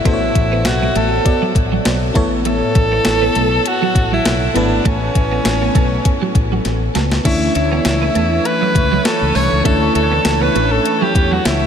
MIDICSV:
0, 0, Header, 1, 8, 480
1, 0, Start_track
1, 0, Tempo, 600000
1, 42, Time_signature, 4, 2, 24, 8
1, 9333, End_track
2, 0, Start_track
2, 0, Title_t, "Alto saxophone"
2, 0, Program_c, 0, 65
2, 52, Note_on_c, 0, 64, 89
2, 530, Note_on_c, 0, 66, 87
2, 542, Note_off_c, 0, 64, 0
2, 770, Note_on_c, 0, 69, 80
2, 782, Note_off_c, 0, 66, 0
2, 1246, Note_off_c, 0, 69, 0
2, 1972, Note_on_c, 0, 69, 112
2, 2937, Note_on_c, 0, 66, 98
2, 2949, Note_off_c, 0, 69, 0
2, 3302, Note_off_c, 0, 66, 0
2, 3307, Note_on_c, 0, 64, 88
2, 3655, Note_on_c, 0, 62, 80
2, 3667, Note_off_c, 0, 64, 0
2, 3898, Note_on_c, 0, 61, 85
2, 3910, Note_off_c, 0, 62, 0
2, 5331, Note_off_c, 0, 61, 0
2, 5806, Note_on_c, 0, 64, 87
2, 6028, Note_off_c, 0, 64, 0
2, 6045, Note_on_c, 0, 64, 85
2, 6768, Note_on_c, 0, 71, 103
2, 6780, Note_off_c, 0, 64, 0
2, 7245, Note_on_c, 0, 69, 91
2, 7257, Note_off_c, 0, 71, 0
2, 7481, Note_on_c, 0, 73, 90
2, 7493, Note_off_c, 0, 69, 0
2, 7717, Note_off_c, 0, 73, 0
2, 7722, Note_on_c, 0, 69, 99
2, 7945, Note_off_c, 0, 69, 0
2, 7963, Note_on_c, 0, 69, 92
2, 8334, Note_on_c, 0, 71, 94
2, 8346, Note_off_c, 0, 69, 0
2, 8572, Note_on_c, 0, 69, 83
2, 8584, Note_off_c, 0, 71, 0
2, 8818, Note_on_c, 0, 67, 84
2, 8830, Note_off_c, 0, 69, 0
2, 9058, Note_on_c, 0, 66, 76
2, 9070, Note_off_c, 0, 67, 0
2, 9164, Note_on_c, 0, 64, 85
2, 9176, Note_off_c, 0, 66, 0
2, 9333, Note_off_c, 0, 64, 0
2, 9333, End_track
3, 0, Start_track
3, 0, Title_t, "FM electric piano"
3, 0, Program_c, 1, 5
3, 0, Control_c, 1, 64, 127
3, 35, Note_on_c, 1, 59, 59
3, 42, Note_on_c, 1, 66, 55
3, 44, Note_on_c, 1, 45, 60
3, 49, Note_on_c, 1, 69, 56
3, 55, Note_on_c, 1, 72, 52
3, 106, Note_off_c, 1, 72, 0
3, 107, Note_on_c, 1, 73, 65
3, 732, Note_off_c, 1, 45, 0
3, 980, Note_off_c, 1, 59, 0
3, 983, Note_off_c, 1, 66, 0
3, 987, Note_off_c, 1, 69, 0
3, 998, Note_on_c, 1, 59, 46
3, 1002, Note_on_c, 1, 66, 42
3, 1005, Note_on_c, 1, 69, 42
3, 1008, Note_on_c, 1, 74, 49
3, 1016, Note_off_c, 1, 73, 0
3, 1703, Note_off_c, 1, 59, 0
3, 1712, Note_on_c, 1, 59, 73
3, 1715, Note_off_c, 1, 69, 0
3, 1719, Note_on_c, 1, 64, 65
3, 1722, Note_off_c, 1, 66, 0
3, 1722, Note_on_c, 1, 45, 71
3, 1725, Note_on_c, 1, 69, 63
3, 1726, Note_off_c, 1, 74, 0
3, 1732, Note_on_c, 1, 73, 80
3, 1734, Control_c, 1, 64, 0
3, 1885, Control_c, 1, 64, 127
3, 2410, Note_off_c, 1, 45, 0
3, 3605, Note_off_c, 1, 59, 0
3, 3609, Note_off_c, 1, 64, 0
3, 3612, Note_off_c, 1, 69, 0
3, 3615, Note_off_c, 1, 73, 0
3, 3633, Note_on_c, 1, 59, 63
3, 3639, Note_on_c, 1, 64, 56
3, 3643, Note_on_c, 1, 57, 60
3, 3646, Note_on_c, 1, 69, 56
3, 3652, Note_on_c, 1, 71, 69
3, 4331, Note_off_c, 1, 57, 0
3, 5526, Note_off_c, 1, 59, 0
3, 5529, Note_off_c, 1, 64, 0
3, 5532, Note_off_c, 1, 69, 0
3, 5535, Note_off_c, 1, 71, 0
3, 5794, Note_on_c, 1, 57, 59
3, 5799, Note_on_c, 1, 61, 55
3, 5803, Note_on_c, 1, 62, 62
3, 5807, Note_on_c, 1, 64, 56
3, 5813, Note_on_c, 1, 73, 65
3, 5814, Control_c, 1, 64, 0
3, 5975, Control_c, 1, 64, 127
3, 6491, Note_off_c, 1, 62, 0
3, 7686, Note_off_c, 1, 57, 0
3, 7689, Note_off_c, 1, 61, 0
3, 7693, Note_off_c, 1, 64, 0
3, 7696, Note_off_c, 1, 73, 0
3, 7714, Note_on_c, 1, 57, 59
3, 7720, Note_on_c, 1, 61, 58
3, 7723, Note_on_c, 1, 62, 60
3, 7727, Note_on_c, 1, 64, 57
3, 7732, Note_on_c, 1, 73, 66
3, 8411, Note_off_c, 1, 62, 0
3, 9333, Note_off_c, 1, 57, 0
3, 9333, Note_off_c, 1, 61, 0
3, 9333, Note_off_c, 1, 64, 0
3, 9333, Note_off_c, 1, 73, 0
3, 9333, End_track
4, 0, Start_track
4, 0, Title_t, "Analog synth pad"
4, 0, Program_c, 2, 89
4, 5802, Note_on_c, 2, 73, 83
4, 5804, Note_on_c, 2, 52, 75
4, 5804, Note_on_c, 2, 57, 67
4, 9333, Note_off_c, 2, 52, 0
4, 9333, Note_off_c, 2, 57, 0
4, 9333, Note_off_c, 2, 73, 0
4, 9333, End_track
5, 0, Start_track
5, 0, Title_t, "Clean electric guitar"
5, 0, Program_c, 3, 27
5, 44, Note_on_c, 3, 62, 73
5, 132, Note_off_c, 3, 62, 0
5, 416, Note_on_c, 3, 59, 68
5, 487, Note_off_c, 3, 59, 0
5, 659, Note_on_c, 3, 59, 75
5, 729, Note_off_c, 3, 59, 0
5, 765, Note_on_c, 3, 57, 64
5, 852, Note_off_c, 3, 57, 0
5, 1135, Note_on_c, 3, 54, 64
5, 1207, Note_off_c, 3, 54, 0
5, 1376, Note_on_c, 3, 54, 58
5, 1448, Note_off_c, 3, 54, 0
5, 1726, Note_on_c, 3, 57, 67
5, 1813, Note_off_c, 3, 57, 0
5, 1965, Note_on_c, 3, 57, 77
5, 2052, Note_off_c, 3, 57, 0
5, 2335, Note_on_c, 3, 59, 68
5, 2407, Note_off_c, 3, 59, 0
5, 2576, Note_on_c, 3, 59, 75
5, 2648, Note_off_c, 3, 59, 0
5, 2686, Note_on_c, 3, 57, 71
5, 2773, Note_off_c, 3, 57, 0
5, 3055, Note_on_c, 3, 54, 69
5, 3127, Note_off_c, 3, 54, 0
5, 3296, Note_on_c, 3, 54, 60
5, 3368, Note_off_c, 3, 54, 0
5, 3644, Note_on_c, 3, 57, 65
5, 3732, Note_off_c, 3, 57, 0
5, 3883, Note_on_c, 3, 57, 83
5, 3971, Note_off_c, 3, 57, 0
5, 4253, Note_on_c, 3, 59, 68
5, 4326, Note_off_c, 3, 59, 0
5, 4494, Note_on_c, 3, 59, 71
5, 4566, Note_off_c, 3, 59, 0
5, 4602, Note_on_c, 3, 57, 70
5, 4690, Note_off_c, 3, 57, 0
5, 4974, Note_on_c, 3, 54, 64
5, 5046, Note_off_c, 3, 54, 0
5, 5216, Note_on_c, 3, 54, 59
5, 5288, Note_off_c, 3, 54, 0
5, 5563, Note_on_c, 3, 57, 66
5, 5651, Note_off_c, 3, 57, 0
5, 5803, Note_on_c, 3, 57, 76
5, 5891, Note_off_c, 3, 57, 0
5, 6173, Note_on_c, 3, 59, 69
5, 6246, Note_off_c, 3, 59, 0
5, 6414, Note_on_c, 3, 59, 73
5, 6486, Note_off_c, 3, 59, 0
5, 6521, Note_on_c, 3, 57, 68
5, 6610, Note_off_c, 3, 57, 0
5, 6894, Note_on_c, 3, 54, 65
5, 6967, Note_off_c, 3, 54, 0
5, 7135, Note_on_c, 3, 54, 62
5, 7207, Note_off_c, 3, 54, 0
5, 7482, Note_on_c, 3, 57, 63
5, 7570, Note_off_c, 3, 57, 0
5, 7721, Note_on_c, 3, 57, 81
5, 7809, Note_off_c, 3, 57, 0
5, 8093, Note_on_c, 3, 59, 69
5, 8166, Note_off_c, 3, 59, 0
5, 8333, Note_on_c, 3, 59, 73
5, 8406, Note_off_c, 3, 59, 0
5, 8440, Note_on_c, 3, 57, 66
5, 8529, Note_off_c, 3, 57, 0
5, 8811, Note_on_c, 3, 54, 64
5, 8885, Note_off_c, 3, 54, 0
5, 9054, Note_on_c, 3, 54, 61
5, 9126, Note_off_c, 3, 54, 0
5, 9333, End_track
6, 0, Start_track
6, 0, Title_t, "Fretless electric bass"
6, 0, Program_c, 4, 35
6, 45, Note_on_c, 4, 33, 90
6, 224, Note_off_c, 4, 33, 0
6, 284, Note_on_c, 4, 33, 85
6, 526, Note_off_c, 4, 33, 0
6, 526, Note_on_c, 4, 35, 82
6, 704, Note_off_c, 4, 35, 0
6, 767, Note_on_c, 4, 33, 87
6, 945, Note_off_c, 4, 33, 0
6, 1242, Note_on_c, 4, 33, 82
6, 1422, Note_off_c, 4, 33, 0
6, 1489, Note_on_c, 4, 35, 81
6, 1667, Note_off_c, 4, 35, 0
6, 1725, Note_on_c, 4, 33, 83
6, 2084, Note_off_c, 4, 33, 0
6, 2204, Note_on_c, 4, 33, 93
6, 2383, Note_off_c, 4, 33, 0
6, 2448, Note_on_c, 4, 33, 80
6, 2626, Note_off_c, 4, 33, 0
6, 2688, Note_on_c, 4, 35, 75
6, 2866, Note_off_c, 4, 35, 0
6, 3164, Note_on_c, 4, 33, 81
6, 3343, Note_off_c, 4, 33, 0
6, 3405, Note_on_c, 4, 35, 75
6, 3584, Note_off_c, 4, 35, 0
6, 3646, Note_on_c, 4, 32, 75
6, 3825, Note_off_c, 4, 32, 0
6, 3884, Note_on_c, 4, 33, 93
6, 4064, Note_off_c, 4, 33, 0
6, 4124, Note_on_c, 4, 33, 85
6, 4303, Note_off_c, 4, 33, 0
6, 4365, Note_on_c, 4, 33, 85
6, 4544, Note_off_c, 4, 33, 0
6, 4602, Note_on_c, 4, 35, 83
6, 4782, Note_off_c, 4, 35, 0
6, 5082, Note_on_c, 4, 33, 77
6, 5262, Note_off_c, 4, 33, 0
6, 5323, Note_on_c, 4, 33, 79
6, 5503, Note_off_c, 4, 33, 0
6, 5566, Note_on_c, 4, 37, 83
6, 5745, Note_off_c, 4, 37, 0
6, 5803, Note_on_c, 4, 38, 93
6, 5983, Note_off_c, 4, 38, 0
6, 6044, Note_on_c, 4, 38, 87
6, 6224, Note_off_c, 4, 38, 0
6, 6284, Note_on_c, 4, 37, 96
6, 6464, Note_off_c, 4, 37, 0
6, 6524, Note_on_c, 4, 40, 89
6, 6703, Note_off_c, 4, 40, 0
6, 7002, Note_on_c, 4, 37, 85
6, 7182, Note_off_c, 4, 37, 0
6, 7376, Note_on_c, 4, 37, 81
6, 7457, Note_off_c, 4, 37, 0
6, 7483, Note_on_c, 4, 36, 83
6, 7582, Note_off_c, 4, 36, 0
6, 7617, Note_on_c, 4, 37, 79
6, 7697, Note_off_c, 4, 37, 0
6, 7723, Note_on_c, 4, 38, 87
6, 7903, Note_off_c, 4, 38, 0
6, 7962, Note_on_c, 4, 38, 89
6, 8143, Note_off_c, 4, 38, 0
6, 8203, Note_on_c, 4, 37, 89
6, 8383, Note_off_c, 4, 37, 0
6, 8444, Note_on_c, 4, 33, 85
6, 8624, Note_off_c, 4, 33, 0
6, 8922, Note_on_c, 4, 40, 91
6, 9102, Note_off_c, 4, 40, 0
6, 9165, Note_on_c, 4, 37, 83
6, 9333, Note_off_c, 4, 37, 0
6, 9333, End_track
7, 0, Start_track
7, 0, Title_t, "Muted clean electric guitar strokes"
7, 284, Note_on_c, 9, 29, 38
7, 364, Note_off_c, 9, 29, 0
7, 526, Note_on_c, 9, 29, 40
7, 606, Note_off_c, 9, 29, 0
7, 1244, Note_on_c, 9, 29, 40
7, 1324, Note_off_c, 9, 29, 0
7, 2203, Note_on_c, 9, 29, 43
7, 2283, Note_off_c, 9, 29, 0
7, 2446, Note_on_c, 9, 29, 43
7, 2526, Note_off_c, 9, 29, 0
7, 3165, Note_on_c, 9, 29, 41
7, 3245, Note_off_c, 9, 29, 0
7, 4124, Note_on_c, 9, 29, 42
7, 4204, Note_off_c, 9, 29, 0
7, 4362, Note_on_c, 9, 29, 42
7, 4442, Note_off_c, 9, 29, 0
7, 5083, Note_on_c, 9, 29, 41
7, 5163, Note_off_c, 9, 29, 0
7, 6044, Note_on_c, 9, 29, 42
7, 6124, Note_off_c, 9, 29, 0
7, 6282, Note_on_c, 9, 29, 39
7, 6362, Note_off_c, 9, 29, 0
7, 7002, Note_on_c, 9, 29, 39
7, 7082, Note_off_c, 9, 29, 0
7, 7960, Note_on_c, 9, 29, 44
7, 8040, Note_off_c, 9, 29, 0
7, 8203, Note_on_c, 9, 29, 39
7, 8283, Note_off_c, 9, 29, 0
7, 8923, Note_on_c, 9, 29, 38
7, 9003, Note_off_c, 9, 29, 0
7, 9333, End_track
8, 0, Start_track
8, 0, Title_t, "Drums"
8, 43, Note_on_c, 9, 36, 97
8, 43, Note_on_c, 9, 42, 77
8, 123, Note_off_c, 9, 36, 0
8, 123, Note_off_c, 9, 42, 0
8, 283, Note_on_c, 9, 36, 80
8, 283, Note_on_c, 9, 42, 72
8, 363, Note_off_c, 9, 36, 0
8, 363, Note_off_c, 9, 42, 0
8, 520, Note_on_c, 9, 38, 106
8, 524, Note_on_c, 9, 42, 97
8, 600, Note_off_c, 9, 38, 0
8, 604, Note_off_c, 9, 42, 0
8, 764, Note_on_c, 9, 42, 67
8, 844, Note_off_c, 9, 42, 0
8, 1005, Note_on_c, 9, 36, 86
8, 1005, Note_on_c, 9, 42, 81
8, 1085, Note_off_c, 9, 36, 0
8, 1085, Note_off_c, 9, 42, 0
8, 1242, Note_on_c, 9, 36, 79
8, 1246, Note_on_c, 9, 42, 76
8, 1322, Note_off_c, 9, 36, 0
8, 1326, Note_off_c, 9, 42, 0
8, 1483, Note_on_c, 9, 42, 70
8, 1484, Note_on_c, 9, 38, 103
8, 1563, Note_off_c, 9, 42, 0
8, 1564, Note_off_c, 9, 38, 0
8, 1723, Note_on_c, 9, 36, 95
8, 1723, Note_on_c, 9, 42, 67
8, 1803, Note_off_c, 9, 36, 0
8, 1803, Note_off_c, 9, 42, 0
8, 1962, Note_on_c, 9, 42, 78
8, 2042, Note_off_c, 9, 42, 0
8, 2202, Note_on_c, 9, 42, 74
8, 2203, Note_on_c, 9, 36, 81
8, 2282, Note_off_c, 9, 42, 0
8, 2283, Note_off_c, 9, 36, 0
8, 2438, Note_on_c, 9, 38, 102
8, 2442, Note_on_c, 9, 42, 93
8, 2518, Note_off_c, 9, 38, 0
8, 2522, Note_off_c, 9, 42, 0
8, 2683, Note_on_c, 9, 42, 66
8, 2763, Note_off_c, 9, 42, 0
8, 2924, Note_on_c, 9, 42, 85
8, 3004, Note_off_c, 9, 42, 0
8, 3162, Note_on_c, 9, 36, 84
8, 3165, Note_on_c, 9, 42, 77
8, 3242, Note_off_c, 9, 36, 0
8, 3245, Note_off_c, 9, 42, 0
8, 3403, Note_on_c, 9, 42, 67
8, 3404, Note_on_c, 9, 38, 103
8, 3483, Note_off_c, 9, 42, 0
8, 3484, Note_off_c, 9, 38, 0
8, 3644, Note_on_c, 9, 42, 69
8, 3724, Note_off_c, 9, 42, 0
8, 3883, Note_on_c, 9, 36, 97
8, 3884, Note_on_c, 9, 42, 78
8, 3963, Note_off_c, 9, 36, 0
8, 3964, Note_off_c, 9, 42, 0
8, 4123, Note_on_c, 9, 36, 82
8, 4123, Note_on_c, 9, 42, 78
8, 4203, Note_off_c, 9, 36, 0
8, 4203, Note_off_c, 9, 42, 0
8, 4360, Note_on_c, 9, 38, 99
8, 4364, Note_on_c, 9, 42, 92
8, 4440, Note_off_c, 9, 38, 0
8, 4444, Note_off_c, 9, 42, 0
8, 4601, Note_on_c, 9, 36, 92
8, 4603, Note_on_c, 9, 42, 62
8, 4681, Note_off_c, 9, 36, 0
8, 4683, Note_off_c, 9, 42, 0
8, 4841, Note_on_c, 9, 42, 83
8, 4842, Note_on_c, 9, 36, 86
8, 4921, Note_off_c, 9, 42, 0
8, 4922, Note_off_c, 9, 36, 0
8, 5080, Note_on_c, 9, 36, 81
8, 5083, Note_on_c, 9, 42, 73
8, 5160, Note_off_c, 9, 36, 0
8, 5163, Note_off_c, 9, 42, 0
8, 5320, Note_on_c, 9, 42, 73
8, 5321, Note_on_c, 9, 38, 47
8, 5400, Note_off_c, 9, 42, 0
8, 5401, Note_off_c, 9, 38, 0
8, 5560, Note_on_c, 9, 42, 61
8, 5561, Note_on_c, 9, 38, 77
8, 5640, Note_off_c, 9, 42, 0
8, 5641, Note_off_c, 9, 38, 0
8, 5692, Note_on_c, 9, 38, 76
8, 5772, Note_off_c, 9, 38, 0
8, 5801, Note_on_c, 9, 36, 101
8, 5802, Note_on_c, 9, 42, 75
8, 5802, Note_on_c, 9, 49, 84
8, 5881, Note_off_c, 9, 36, 0
8, 5882, Note_off_c, 9, 42, 0
8, 5882, Note_off_c, 9, 49, 0
8, 6042, Note_on_c, 9, 42, 77
8, 6122, Note_off_c, 9, 42, 0
8, 6279, Note_on_c, 9, 38, 99
8, 6283, Note_on_c, 9, 42, 92
8, 6359, Note_off_c, 9, 38, 0
8, 6363, Note_off_c, 9, 42, 0
8, 6523, Note_on_c, 9, 42, 66
8, 6603, Note_off_c, 9, 42, 0
8, 6763, Note_on_c, 9, 42, 86
8, 6843, Note_off_c, 9, 42, 0
8, 7001, Note_on_c, 9, 36, 79
8, 7005, Note_on_c, 9, 42, 75
8, 7081, Note_off_c, 9, 36, 0
8, 7085, Note_off_c, 9, 42, 0
8, 7241, Note_on_c, 9, 42, 77
8, 7242, Note_on_c, 9, 38, 111
8, 7321, Note_off_c, 9, 42, 0
8, 7322, Note_off_c, 9, 38, 0
8, 7482, Note_on_c, 9, 46, 67
8, 7562, Note_off_c, 9, 46, 0
8, 7722, Note_on_c, 9, 36, 106
8, 7723, Note_on_c, 9, 42, 80
8, 7802, Note_off_c, 9, 36, 0
8, 7803, Note_off_c, 9, 42, 0
8, 7962, Note_on_c, 9, 42, 76
8, 8042, Note_off_c, 9, 42, 0
8, 8199, Note_on_c, 9, 38, 108
8, 8203, Note_on_c, 9, 42, 96
8, 8279, Note_off_c, 9, 38, 0
8, 8283, Note_off_c, 9, 42, 0
8, 8444, Note_on_c, 9, 42, 66
8, 8524, Note_off_c, 9, 42, 0
8, 8684, Note_on_c, 9, 42, 85
8, 8764, Note_off_c, 9, 42, 0
8, 8921, Note_on_c, 9, 36, 87
8, 8925, Note_on_c, 9, 42, 76
8, 9001, Note_off_c, 9, 36, 0
8, 9005, Note_off_c, 9, 42, 0
8, 9163, Note_on_c, 9, 42, 77
8, 9164, Note_on_c, 9, 38, 108
8, 9243, Note_off_c, 9, 42, 0
8, 9244, Note_off_c, 9, 38, 0
8, 9333, End_track
0, 0, End_of_file